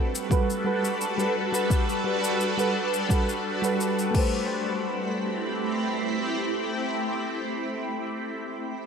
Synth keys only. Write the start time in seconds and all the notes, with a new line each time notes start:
0.30 G3 F#4 A4 B4
0.64 G3 F#4 A4 B4
1.18 G3 F#4 A4 B4
1.52 G3 F#4 A4 B4
2.04 G3 F#4 A4 B4
2.57 G3 F#4 A4 B4
3.09 G3 F#4 A4 B4
3.62 G3 F#4 A4 B4
4.11 A3 G4
4.16 B4 C5